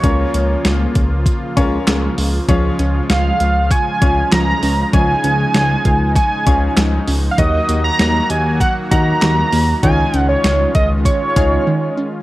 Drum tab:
HH |xxxxxxxo|xxxxxxxo|xxxxxxxo|xxxxxxxo|
CP |------x-|------x-|------x-|------x-|
SD |--o---o-|--o---o-|--o---o-|--o---o-|
BD |o--ooo--|o---oo--|o--ooo--|o---oo--|

HH |xxxxxx--|
CP |--------|
SD |--o-----|
BD |o--ooo--|